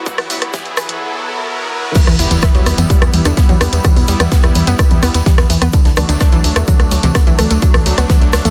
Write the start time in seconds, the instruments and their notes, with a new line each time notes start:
Already playing: string section D3 A3 E4 F#4, riser
0.06 synth arpeggio sound E3, analog synth pad F#3 B3 E4, kick, closed hi-hat, shaker
0.18 cross-stick, open hi-hat, low conga
0.30 synth arpeggio sound E3, analog synth pad F#3 B3 E4, open hi-hat, shaker
0.42 cross-stick, closed hi-hat
0.53 synth arpeggio sound E3, analog synth pad F#3 B3 E4, kick, snare, closed hi-hat, low conga, shaker
0.66 closed hi-hat
0.77 synth arpeggio sound E3, analog synth pad F#3 B3 E4, cross-stick, open hi-hat, shaker
0.89 closed hi-hat, low conga
1.01 analog synth pad F#3 B3 E4
1.25 analog synth pad F#3 B3 E4
1.48 analog synth pad F#3 B3 E4
1.72 analog synth pad F#3 B3 E4
1.95 synth arpeggio sound E3 E4, kick, closed hi-hat, crash, ride, tambourine, impact, shaker
2.07 analog synth bass E2, synth arpeggio sound E3 E4, cross-stick, snare, closed hi-hat, tambourine, low conga
2.19 analog synth bass E2, analog synth pad G3 B3 E4, synth arpeggio sound E4 E5, open hi-hat, ride, shaker
2.31 analog synth bass E2, synth arpeggio sound E3 E4, closed hi-hat, tambourine
2.42 synth arpeggio sound E4 E5, kick, cross-stick, snare, closed hi-hat, ride, tambourine, low conga, shaker
2.55 analog synth bass E2, synth arpeggio sound F#3 F#4, closed hi-hat, tambourine
2.66 analog synth bass E2, cross-stick, open hi-hat, ride, shaker
2.78 analog synth bass F#2, synth arpeggio sound B3 B4, closed hi-hat, tambourine, low conga
2.90 synth arpeggio sound G3 G4, kick, closed hi-hat, ride, tambourine, shaker
3.02 analog synth bass E2, synth arpeggio sound E3 E4, cross-stick, closed hi-hat, tambourine
3.13 analog synth bass E2, synth arpeggio sound G3 G4, open hi-hat, ride, low conga, shaker
3.25 analog synth bass E2, synth arpeggio sound D3 D4, cross-stick, closed hi-hat, tambourine
3.37 synth arpeggio sound B3 B4, kick, snare, closed hi-hat, ride, tambourine, shaker
3.49 analog synth bass E2, synth arpeggio sound F#3 F#4, closed hi-hat, tambourine, low conga
3.61 analog synth bass E2, synth arpeggio sound B3 B4, cross-stick, open hi-hat, ride, shaker
3.73 analog synth bass E2, synth arpeggio sound B3 B4, closed hi-hat, tambourine
3.84 synth arpeggio sound G3 G4, kick, cross-stick, closed hi-hat, ride, tambourine, low conga, shaker
3.96 analog synth bass E2, synth arpeggio sound B2 B3, open hi-hat, tambourine
4.08 analog synth bass E2, analog synth pad G3 B3 E4, synth arpeggio sound G3 G4, open hi-hat, ride, shaker
4.20 analog synth bass E2, synth arpeggio sound B3 B4, cross-stick, closed hi-hat, tambourine, low conga
4.32 synth arpeggio sound B3 B4, kick, snare, closed hi-hat, ride, tambourine, shaker
4.43 analog synth bass E2, synth arpeggio sound E3 E4, cross-stick, closed hi-hat, tambourine
4.55 analog synth bass E2, open hi-hat, ride, low conga, shaker
4.67 analog synth bass F#2, synth arpeggio sound B3 B4, closed hi-hat, tambourine
4.79 synth arpeggio sound G3 G4, kick, cross-stick, closed hi-hat, ride, tambourine, shaker
4.90 analog synth bass E2, synth arpeggio sound B2 B3, closed hi-hat, tambourine, low conga
5.03 analog synth bass E2, analog synth pad G3 B3 E4, synth arpeggio sound B3 B4, cross-stick, open hi-hat, ride, shaker
5.14 analog synth bass E2, synth arpeggio sound B3 B4, snare, closed hi-hat, tambourine
5.26 synth arpeggio sound G3 G4, kick, snare, closed hi-hat, ride, tambourine, low conga, shaker
5.38 analog synth bass E2, synth arpeggio sound E3 E4, cross-stick, snare, closed hi-hat, tambourine
5.50 analog synth bass E2, synth arpeggio sound E3 E4, open hi-hat, ride, shaker
5.62 analog synth bass E2, synth arpeggio sound B3 B4, cross-stick, closed hi-hat, tambourine, low conga
5.73 synth arpeggio sound D3 D4, kick, closed hi-hat, ride, tambourine, shaker
5.85 analog synth bass D2, synth arpeggio sound D3 D4, snare, closed hi-hat, tambourine
5.97 analog synth bass D2, analog synth pad F#3 A3 D4, synth arpeggio sound D4 D5, cross-stick, open hi-hat, ride, low conga, shaker
6.09 analog synth bass D2, synth arpeggio sound D3 D4, closed hi-hat, tambourine
6.20 synth arpeggio sound D4 D5, kick, cross-stick, snare, closed hi-hat, ride, tambourine, shaker
6.32 analog synth bass D2, synth arpeggio sound E3 E4, closed hi-hat, tambourine, low conga
6.44 analog synth bass D2, open hi-hat, ride, shaker
6.56 analog synth bass E2, synth arpeggio sound A3 A4, cross-stick, closed hi-hat, tambourine
6.68 synth arpeggio sound F#3 F#4, kick, closed hi-hat, ride, tambourine, low conga, shaker
6.80 analog synth bass D2, synth arpeggio sound D3 D4, cross-stick, closed hi-hat, tambourine
6.91 analog synth bass D2, synth arpeggio sound F#3 F#4, open hi-hat, ride, shaker
7.03 analog synth bass D2, synth arpeggio sound C3 C4, closed hi-hat, tambourine, low conga
7.15 synth arpeggio sound B3 B4, kick, cross-stick, snare, closed hi-hat, ride, tambourine, shaker
7.27 analog synth bass D2, synth arpeggio sound E3 E4, closed hi-hat, tambourine
7.39 analog synth bass D2, synth arpeggio sound A3 A4, cross-stick, open hi-hat, ride, low conga, shaker
7.50 analog synth bass D2, synth arpeggio sound A3 A4, closed hi-hat, tambourine
7.62 synth arpeggio sound F#3 F#4, kick, closed hi-hat, ride, tambourine, shaker
7.74 analog synth bass D2, synth arpeggio sound A2 A3, cross-stick, open hi-hat, tambourine, low conga
7.86 analog synth bass D2, analog synth pad F#3 A3 D4, synth arpeggio sound F#3 F#4, open hi-hat, ride, shaker
7.98 analog synth bass D2, synth arpeggio sound B3 B4, cross-stick, closed hi-hat, tambourine
8.09 synth arpeggio sound B3 B4, kick, snare, closed hi-hat, ride, tambourine, low conga, shaker
8.21 analog synth bass D2, synth arpeggio sound D3 D4, closed hi-hat, tambourine
8.33 analog synth bass D2, cross-stick, snare, open hi-hat, ride, shaker
8.45 analog synth bass E2, synth arpeggio sound A3 A4, closed hi-hat, tambourine, low conga